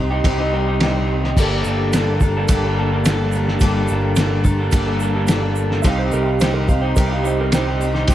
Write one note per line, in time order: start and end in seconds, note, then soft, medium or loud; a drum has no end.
0.00 0.20 C2 medium
0.00 0.24 C4 soft
0.00 0.25 D#4 medium
0.00 0.25 G4 medium
0.00 5.81 G4 medium
0.00 1.34 D#5 medium
0.00 1.34 C6 medium
0.10 0.39 C4 medium
0.10 0.39 D#4 medium
0.10 0.38 G4 medium
0.24 1.33 C2 medium
0.24 0.81 C3 medium
0.24 0.82 G3 medium
0.24 0.81 C4 medium
0.24 0.81 D#4 medium
0.24 0.85 G4 medium
0.24 kick loud
0.24 ride bell medium
0.38 0.53 C4 medium
0.38 0.53 D#4 medium
0.38 0.55 G4 medium
0.53 0.81 G3 medium
0.53 0.69 C4 medium
0.53 0.68 D#4 medium
0.53 0.67 G4 medium
0.67 0.81 C4 medium
0.67 0.82 D#4 medium
0.67 0.83 G4 medium
0.80 1.23 C3 loud
0.80 1.39 G3 loud
0.80 0.96 C4 loud
0.80 0.95 D#4 loud
0.80 0.94 G4 loud
0.80 snare loud
0.80 ride bell medium
0.95 1.25 C4 medium
0.95 1.23 D#4 medium
0.95 1.23 G4 medium
1.24 1.37 C4 medium
1.24 1.36 D#4 medium
1.24 1.40 G4 medium
1.24 snare soft
1.36 1.62 G1 loud
1.36 1.93 G2 loud
1.36 1.93 D3 loud
1.36 1.65 G3 loud
1.36 5.81 A#3 medium
1.36 1.65 A#3 loud
1.36 1.66 D4 loud
1.36 5.81 A5 medium
1.36 kick loud
1.36 crash loud
1.36 shaker medium
1.41 1.67 A4 loud
1.64 2.45 G1 medium
1.64 1.94 G3 medium
1.64 1.95 A#3 medium
1.64 1.95 D4 medium
1.64 1.95 A4 medium
1.64 shaker medium
1.93 2.40 G2 loud
1.93 2.36 D3 loud
1.93 2.10 G3 loud
1.93 2.09 A#3 loud
1.93 2.09 D4 loud
1.93 2.07 A4 loud
1.93 snare loud
1.93 ride bell medium
1.93 shaker medium
2.08 2.22 G3 medium
2.08 2.23 A#3 medium
2.08 2.23 D4 medium
2.08 2.23 A4 medium
2.20 2.49 A#3 medium
2.20 2.50 D4 medium
2.20 2.49 A4 medium
2.20 muted clean electric guitar stroke soft
2.20 kick medium
2.20 shaker medium
2.25 2.49 G3 medium
2.37 2.66 G3 medium
2.37 2.65 A#3 medium
2.37 2.64 D4 medium
2.37 2.63 A4 medium
2.48 3.57 G1 medium
2.48 3.05 G2 medium
2.48 3.05 D3 medium
2.48 3.05 G3 medium
2.48 3.06 A#3 loud
2.48 3.06 D4 medium
2.48 3.06 A4 medium
2.48 kick loud
2.48 ride bell medium
2.48 shaker loud
2.64 2.78 G3 medium
2.64 2.77 A#3 medium
2.64 2.78 D4 medium
2.64 2.79 A4 medium
2.78 2.95 G3 medium
2.78 2.93 A#3 medium
2.78 2.92 D4 medium
2.78 2.92 A4 medium
2.93 3.06 G3 medium
2.93 3.06 A#3 medium
2.93 3.06 D4 medium
2.93 3.06 A4 medium
3.05 3.48 G2 loud
3.05 3.48 D3 medium
3.05 3.22 G3 loud
3.05 3.21 A#3 loud
3.05 3.20 D4 loud
3.05 3.19 A4 loud
3.05 snare loud
3.05 ride bell medium
3.05 shaker loud
3.20 3.51 G3 medium
3.20 3.49 A#3 medium
3.20 3.48 D4 medium
3.20 3.47 A4 medium
3.32 3.61 A#3 soft
3.32 3.62 D4 medium
3.32 3.62 A4 medium
3.32 shaker medium
3.36 3.61 G3 soft
3.48 3.63 G3 medium
3.48 3.62 A#3 medium
3.48 3.63 D4 medium
3.48 3.63 A4 medium
3.48 snare soft
3.60 3.87 G1 loud
3.60 4.17 G2 loud
3.60 4.18 D3 loud
3.60 3.90 G3 loud
3.60 3.90 A#3 loud
3.60 kick loud
3.60 ride bell medium
3.60 shaker loud
3.64 3.91 D4 loud
3.64 3.92 A4 loud
3.88 4.70 G1 medium
3.88 4.19 G3 medium
3.88 4.18 A#3 medium
3.88 shaker medium
3.92 4.18 D4 medium
3.92 4.19 A4 medium
4.16 4.60 G2 loud
4.16 4.60 D3 loud
4.16 4.33 G3 loud
4.16 4.32 A#3 loud
4.16 4.31 D4 loud
4.16 snare loud
4.16 ride bell medium
4.16 shaker loud
4.20 4.30 A4 loud
4.32 4.45 G3 medium
4.32 4.45 A#3 medium
4.32 4.45 D4 medium
4.32 4.45 A4 medium
4.44 4.71 G3 medium
4.44 4.72 A#3 medium
4.44 4.72 D4 medium
4.44 4.72 A4 medium
4.44 muted clean electric guitar stroke soft
4.44 kick medium
4.44 shaker medium
4.59 4.89 G3 medium
4.59 4.87 A#3 medium
4.59 4.87 D4 medium
4.59 4.86 A4 medium
4.71 5.81 G1 medium
4.71 5.28 G2 medium
4.71 5.29 D3 medium
4.71 5.27 G3 medium
4.71 5.27 A#3 loud
4.71 5.28 D4 medium
4.71 5.29 A4 loud
4.71 kick loud
4.71 ride bell medium
4.71 shaker loud
4.87 5.01 G3 medium
4.87 5.00 A#3 medium
4.87 5.01 D4 medium
4.87 5.01 A4 medium
5.00 5.16 G3 medium
5.00 5.15 A#3 medium
5.00 5.15 D4 medium
5.00 5.13 A4 medium
5.00 shaker medium
5.15 5.28 G3 medium
5.15 5.28 A#3 medium
5.15 5.29 D4 medium
5.15 5.29 A4 medium
5.27 5.70 G2 loud
5.27 5.71 D3 loud
5.27 5.44 G3 loud
5.27 5.42 A#3 loud
5.27 5.42 D4 loud
5.27 5.41 A4 loud
5.27 snare loud
5.27 ride bell medium
5.27 shaker loud
5.42 5.72 G3 medium
5.42 5.70 A#3 medium
5.42 5.70 D4 medium
5.42 5.69 A4 medium
5.56 shaker medium
5.70 5.85 G3 medium
5.70 5.84 A#3 medium
5.70 5.83 D4 medium
5.70 5.83 A4 medium
5.70 snare soft
5.82 6.11 C2 loud
5.82 6.40 C3 loud
5.82 6.12 G3 loud
5.82 6.13 C4 loud
5.82 8.15 G4 medium
5.82 8.15 D#5 medium
5.82 5.85 E5 medium
5.82 8.15 C6 medium
5.82 kick loud
5.82 ride bell medium
5.82 shaker loud
5.86 6.14 D#4 loud
5.86 6.14 G4 loud
5.86 5.99 F5 loud
5.99 6.12 C5 medium
6.12 6.93 C2 medium
6.12 6.41 G3 medium
6.12 6.41 C4 medium
6.12 6.41 D#4 medium
6.12 6.43 G4 medium
6.12 6.26 A#4 medium
6.12 shaker medium
6.23 6.26 E5 medium
6.27 6.40 F5 medium
6.40 7.52 C3 medium
6.40 6.69 G3 loud
6.40 6.57 C4 loud
6.40 6.55 D#4 loud
6.40 6.54 G4 loud
6.40 6.54 C5 loud
6.40 snare loud
6.40 ride bell medium
6.40 shaker medium
6.54 6.69 C4 medium
6.54 6.69 D#4 medium
6.54 6.69 G4 medium
6.54 6.67 A#4 loud
6.68 6.97 D#4 medium
6.68 6.97 G4 medium
6.68 6.81 F5 loud
6.68 muted clean electric guitar stroke soft
6.68 kick medium
6.68 shaker medium
6.72 6.97 C4 soft
6.81 7.11 C4 medium
6.81 7.11 D#4 medium
6.81 7.10 G4 medium
6.81 6.95 C5 medium
6.96 8.05 C2 loud
6.96 7.53 C3 medium
6.96 7.52 G3 medium
6.96 7.53 C4 medium
6.96 7.54 D#4 loud
6.96 7.56 G4 loud
6.96 7.10 A#4 loud
6.96 kick loud
6.96 ride bell medium
6.96 shaker loud
7.07 7.26 G4 medium
7.07 7.11 E5 medium
7.12 7.23 C4 medium
7.12 7.24 D#4 medium
7.12 7.24 F5 loud
7.23 7.53 G3 medium
7.23 7.39 C4 medium
7.23 7.38 D#4 medium
7.23 7.38 G4 medium
7.23 7.39 C5 medium
7.23 shaker medium
7.38 7.52 C4 medium
7.38 7.53 D#4 medium
7.38 7.54 G4 medium
7.38 7.53 A#4 medium
7.52 7.95 C3 loud
7.52 8.09 G3 loud
7.52 7.67 C4 loud
7.52 7.66 D#4 loud
7.52 7.66 G4 loud
7.52 8.15 C5 loud
7.52 snare loud
7.52 ride bell medium
7.52 shaker medium
7.66 7.95 C4 medium
7.66 7.94 D#4 medium
7.66 7.93 G4 medium
7.81 8.08 C4 soft
7.81 8.09 D#4 medium
7.81 8.09 G4 medium
7.81 shaker medium
7.94 8.08 C4 medium
7.94 8.09 D#4 medium
7.94 8.09 G4 medium
7.94 snare soft
8.08 8.15 C2 loud
8.08 8.15 C3 loud
8.08 8.15 G3 loud
8.08 8.15 C4 loud
8.08 8.15 D#4 loud
8.08 8.15 G4 loud
8.08 kick loud
8.08 ride bell medium
8.08 shaker medium